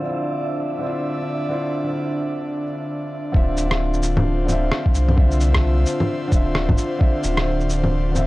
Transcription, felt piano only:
0.00 0.78 D3 medium
0.00 0.04 C4 medium
0.00 0.80 C4 medium
0.00 0.06 E4 medium
0.00 0.09 F4 loud
0.06 0.81 E4 medium
0.06 0.82 F4 medium
0.78 1.47 D3 medium
0.78 1.48 C4 medium
0.84 1.50 E4 medium
0.84 1.51 F4 medium
1.49 1.82 D3 medium
1.49 1.84 C4 medium
1.49 1.85 E4 medium
1.49 1.86 F4 loud
1.84 2.61 D3 medium
1.84 2.63 C4 medium
1.89 2.64 E4 medium
1.89 2.65 F4 medium
3.32 3.66 D3 loud
3.32 3.67 C4 medium
3.32 3.68 F4 medium
3.36 3.69 E5 loud
3.67 4.43 D3 medium
3.67 4.46 C4 medium
3.72 4.47 F4 medium
3.72 4.49 E5 medium
4.44 5.13 D3 medium
4.44 5.15 C4 medium
4.50 5.16 F4 medium
4.50 5.17 E5 loud
5.15 5.49 D3 loud
5.15 5.51 C4 medium
5.15 5.51 F4 medium
5.15 5.52 E5 loud
5.50 6.26 D3 medium
5.50 6.29 C4 medium
5.56 6.30 F4 medium
5.56 6.32 E5 medium
6.28 6.96 D3 medium
6.28 6.98 C4 medium
6.33 6.99 F4 medium
6.33 7.00 E5 loud
6.98 7.32 D3 loud
6.98 7.34 C4 medium
6.98 7.34 F4 medium
6.98 7.35 E5 loud
7.33 8.09 D3 medium
7.33 8.12 C4 medium
7.39 8.14 F4 medium
7.39 8.15 E5 medium
8.11 8.27 D3 medium
8.11 8.27 C4 medium
8.16 8.27 F4 medium
8.16 8.27 E5 loud

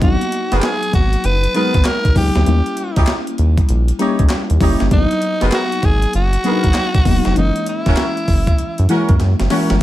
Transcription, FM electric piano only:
0.01 0.91 F#3 medium
0.01 0.91 A#3 medium
0.01 0.92 B3 medium
0.01 0.10 D4 medium
1.54 2.03 F#3 medium
1.54 2.03 G#3 medium
1.54 2.03 B3 medium
1.54 2.04 D#4 medium
2.15 2.40 F#3 medium
2.15 2.40 A#3 medium
2.15 2.41 B3 medium
2.15 2.41 D#4 medium
2.46 3.36 G3 medium
2.46 3.36 A#3 medium
2.46 3.37 C#4 medium
2.46 3.37 E4 medium
3.99 4.48 G3 medium
3.99 4.48 A#3 medium
3.99 4.48 C#4 medium
3.99 4.48 G4 medium
4.60 4.85 G3 medium
4.60 4.85 A#3 medium
4.60 4.86 C#4 medium
4.60 4.86 E4 medium
4.91 5.81 F#3 medium
4.91 5.81 A#3 medium
4.91 5.82 B3 medium
4.91 5.00 D4 medium
4.99 5.85 D#4 medium
6.44 6.93 F#3 medium
6.44 6.93 A#3 medium
6.44 6.93 B3 medium
6.44 6.53 D4 medium
6.52 6.97 D#4 medium
7.05 7.30 F#3 medium
7.05 7.30 A#3 medium
7.05 7.30 B3 medium
7.05 7.31 D#4 medium
7.35 8.26 E3 medium
7.35 8.26 G#3 medium
7.35 8.26 A#3 medium
7.35 8.26 C#4 medium
8.88 9.38 E3 medium
8.88 9.38 G#3 medium
8.88 9.38 A#3 medium
8.88 9.38 E4 medium
9.50 9.75 E3 medium
9.50 9.75 G#3 medium
9.50 9.75 A#3 medium
9.50 9.75 C#4 medium

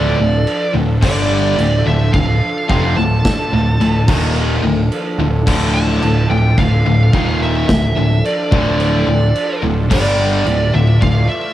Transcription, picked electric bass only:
0.00 0.15 D1 medium
0.19 0.45 D1 medium
0.75 1.00 D1 medium
1.02 1.54 G1 loud
1.58 1.84 D1 medium
1.86 2.11 D1 medium
2.14 2.39 D1 medium
2.70 2.95 F1 loud
2.97 3.22 D1 medium
3.53 3.78 D1 medium
3.80 4.06 D1 medium
4.08 4.59 D#1 medium
4.63 4.89 D1 medium
5.19 5.44 D1 medium
5.47 5.98 D1 loud
6.03 6.28 D1 medium
6.30 6.56 D1 medium
6.58 6.83 D1 medium
6.85 7.11 D1 medium
7.13 7.65 D#1 loud
7.69 7.95 D1 medium
7.96 8.22 D1 medium
8.52 9.04 D1 loud
9.07 9.33 D1 medium
9.63 9.88 D1 medium
9.91 10.42 G1 loud
10.46 10.72 D1 medium
10.74 11.00 D1 medium
11.02 11.28 D1 medium

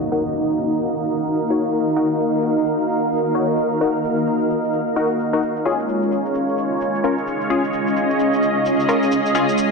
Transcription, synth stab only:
0.12 0.24 D#4 medium
0.12 0.24 F#4 medium
0.12 0.24 A#4 loud
1.50 1.62 D#4 medium
1.50 1.62 F#4 medium
1.50 1.62 C#5 medium
1.96 2.09 D#4 medium
1.96 2.09 F#4 medium
1.96 2.09 A#4 medium
3.35 3.47 D#4 medium
3.35 3.47 F#4 medium
3.35 3.47 C#5 medium
3.81 3.93 D#4 medium
3.81 3.93 F#4 medium
3.81 3.93 A#4 medium
4.96 5.09 D#4 medium
4.96 5.09 F#4 medium
4.96 5.09 A#4 medium
5.33 5.41 D#4 medium
5.33 5.41 F#4 medium
5.33 5.41 A#4 medium
5.65 5.78 C#4 medium
5.65 5.78 F4 medium
5.65 5.78 G#4 loud
7.04 7.16 C#4 medium
7.04 7.16 F4 medium
7.04 7.16 A#4 medium
7.50 7.62 C#4 medium
7.50 7.62 F4 medium
7.50 7.62 G#4 medium
8.89 9.01 C#4 medium
8.89 9.01 F4 medium
8.89 9.01 A#4 medium
9.35 9.47 C#4 medium
9.35 9.47 F4 medium
9.35 9.47 G#4 loud

